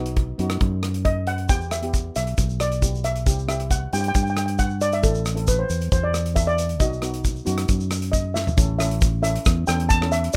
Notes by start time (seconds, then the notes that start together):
Already playing: B1 B3 D#4 F#4 B4
0.06 closed hi-hat
0.16 kick, closed hi-hat
0.38 F#2 B3 D#4 F#4, closed hi-hat
0.50 cross-stick, closed hi-hat
0.61 F#2, kick, closed hi-hat
0.83 cross-stick, closed hi-hat
0.94 closed hi-hat
1.05 D#5, kick, closed hi-hat
1.27 F#5, closed hi-hat
1.38 closed hi-hat
1.49 E2 B3 E4 G4 G5, kick, closed hi-hat, shaker
1.61 shaker
1.71 E5, cross-stick, closed hi-hat, shaker
1.82 B3 E4 G4, closed hi-hat
1.93 kick, closed hi-hat, shaker
2.16 B1 E5, closed hi-hat, shaker
2.27 closed hi-hat, shaker
2.38 B1, kick, closed hi-hat, shaker
2.49 shaker
2.60 D5, cross-stick, closed hi-hat, shaker
2.72 closed hi-hat, shaker
2.82 B3 E4 G4, kick, closed hi-hat, shaker
2.95 shaker
3.04 E5, closed hi-hat, shaker
3.16 closed hi-hat, shaker
3.26 C2 C4 E4 G4, kick, closed hi-hat, shaker
3.39 shaker
3.48 C4 E4 G4 E5, cross-stick, closed hi-hat, shaker
3.60 closed hi-hat
3.71 F#5, kick, closed hi-hat, shaker
3.93 G2 C4 E4 G4 G5, closed hi-hat, shaker
4.01 G5, closed hi-hat
4.05 G5, shaker
4.14 G2 G5, kick, closed hi-hat, shaker
4.23 G5, shaker
4.30 G5
4.37 G5, cross-stick, closed hi-hat, shaker
4.46 G5, closed hi-hat, shaker
4.59 F#5, kick, closed hi-hat, shaker
4.70 shaker
4.81 D5, closed hi-hat, shaker
4.92 E5, closed hi-hat, shaker
5.02 A1 C4 E4 A4, kick, closed hi-hat, shaker
5.15 shaker
5.26 cross-stick, closed hi-hat, shaker
5.35 C4 E4 A4, closed hi-hat
5.47 B4, kick, closed hi-hat, shaker
5.59 C5
5.70 E2, closed hi-hat, shaker
5.81 closed hi-hat, shaker
5.92 E2 C5, kick, closed hi-hat, shaker
6.04 D5
6.14 cross-stick, closed hi-hat, shaker
6.26 closed hi-hat, shaker
6.34 C4 E4 A4 E5, kick, closed hi-hat, shaker
6.47 D5
6.58 closed hi-hat, shaker
6.69 closed hi-hat, shaker
6.80 B1 B3 D#4 F#4 D#5, kick, closed hi-hat, shaker
6.93 shaker
7.01 B3 D#4 F#4, cross-stick, closed hi-hat, shaker
7.14 closed hi-hat, shaker
7.25 kick, closed hi-hat, shaker
7.36 shaker
7.45 F#2 B3 D#4 F#4, closed hi-hat, shaker
7.58 cross-stick, closed hi-hat, shaker
7.68 F#2, kick, closed hi-hat, shaker
7.80 shaker
7.91 cross-stick, closed hi-hat, shaker
8.02 closed hi-hat
8.12 D#5, kick, closed hi-hat, shaker
8.34 E5, snare, shaker
8.47 floor tom, shaker
8.57 A1 C#4 E4 A4, kick, closed hi-hat, shaker
8.78 C#4 E4 A4 E5, cross-stick, closed hi-hat, shaker
8.91 closed hi-hat
9.01 kick, closed hi-hat, shaker
9.22 C#4 E4 A4 E5, closed hi-hat, shaker
9.36 closed hi-hat
9.46 E2, kick, cross-stick, closed hi-hat, shaker
9.67 E2 C#4 E4 A4 G5, cross-stick, closed hi-hat, shaker
9.80 closed hi-hat
9.89 A5, kick, closed hi-hat, shaker
10.01 C#4 E4 A4, cross-stick
10.12 E5, closed hi-hat, shaker
10.24 closed hi-hat
10.33 shaker